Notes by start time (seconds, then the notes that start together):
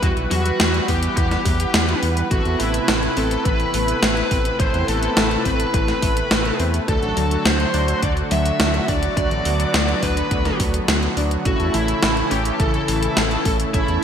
Already playing: E3 G3 B4 F#5
0.02 E2 E3 G3 B3 E4 F#4, kick, closed hi-hat
0.17 B1, closed hi-hat
0.31 E2 F#3 F#4, open hi-hat
0.46 closed hi-hat
0.60 E2 G3, snare, closed hi-hat
0.74 closed hi-hat
0.88 E2 G3 B3 E4 G4 F#5, kick, open hi-hat
1.03 closed hi-hat
1.17 E2 E3 G4, kick, closed hi-hat
1.31 snare, closed hi-hat
1.45 E2 F#3, kick, open hi-hat
1.60 closed hi-hat
1.74 E2 G3, snare, closed hi-hat
1.88 closed hi-hat
2.03 E2 B3, open hi-hat
2.17 closed hi-hat
2.31 A1 C3 E3 A3 B3 C4 E4 F#4 A4, kick, closed hi-hat
2.45 E2, closed hi-hat
2.60 A1 A3 E4, open hi-hat
2.74 closed hi-hat
2.88 A1 B3, snare, closed hi-hat
3.03 closed hi-hat
3.17 A1 B3 C4 E4 A4, open hi-hat
3.31 closed hi-hat
3.45 A1 E3 B4, kick, closed hi-hat
3.60 closed hi-hat
3.74 A1 A3, open hi-hat
3.88 closed hi-hat
4.02 A1 B3, snare, closed hi-hat
4.17 closed hi-hat
4.31 A1 C4, kick, open hi-hat
4.45 closed hi-hat
4.60 A1 E3 B3 C4 E4 A4 C5, kick, closed hi-hat
4.74 E2, closed hi-hat
4.88 A1 A3 A4, open hi-hat
5.03 closed hi-hat
5.17 A1 B3, snare, closed hi-hat
5.31 closed hi-hat
5.45 A1 B3 C4 E4 A4 B4, kick, open hi-hat
5.60 closed hi-hat
5.74 A1 E3 B4, kick, closed hi-hat
5.88 snare, closed hi-hat
6.02 A1 A3, kick, open hi-hat
6.17 closed hi-hat
6.31 A1 B3, snare, closed hi-hat
6.45 closed hi-hat
6.60 E2 B3 C4 E4 A4, open hi-hat
6.74 closed hi-hat
6.88 D2 D3 F#3 A3 D4 F#4 A4, kick, closed hi-hat
7.02 A1, closed hi-hat
7.17 D2 F#3, open hi-hat
7.31 closed hi-hat
7.45 D2 A3 C5, snare, closed hi-hat
7.60 closed hi-hat
7.74 D2 F#3 A3 D4 F#4, open hi-hat
7.88 closed hi-hat
8.03 D2 D3 D5, kick, closed hi-hat
8.17 closed hi-hat
8.31 D2 F#3 E5, open hi-hat
8.45 closed hi-hat
8.60 D2 A3, snare, closed hi-hat
8.74 closed hi-hat
8.88 D2 D4 D5, kick, open hi-hat
9.03 closed hi-hat
9.17 D2 D3 F#3 A3 B3 D4 F#4 D5, kick, closed hi-hat
9.31 A1, closed hi-hat
9.45 D2 F#3, open hi-hat
9.60 closed hi-hat
9.74 D2 A3, snare, closed hi-hat
9.88 closed hi-hat
10.03 D2 F#3 A3 D4 F#4 B4, kick, open hi-hat
10.17 closed hi-hat
10.31 D2 D3, kick, closed hi-hat
10.45 snare, closed hi-hat
10.60 D2 F#3, kick, open hi-hat
10.74 closed hi-hat
10.88 D2 A3, snare, closed hi-hat
11.03 closed hi-hat
11.17 D2 D4, open hi-hat
11.31 closed hi-hat
11.45 A1 C#3 E3 A3 C#4 E4 F#4 A4, kick, closed hi-hat
11.60 E2, closed hi-hat
11.74 A1 E3 E4, open hi-hat
11.88 closed hi-hat
12.03 A1 A3, snare, closed hi-hat
12.17 closed hi-hat
12.31 A1 A3 C#4 E4 G4 A4, open hi-hat
12.45 closed hi-hat
12.60 A1 C#3 A4, kick, closed hi-hat
12.74 closed hi-hat
12.88 A1 E3, open hi-hat
13.03 closed hi-hat
13.17 A1 A3, snare, closed hi-hat
13.31 closed hi-hat
13.45 A1 C#4 A4, kick, open hi-hat
13.60 closed hi-hat
13.74 A1 C#3 A3 C#4 E4 A4, kick, closed hi-hat
13.88 E2, closed hi-hat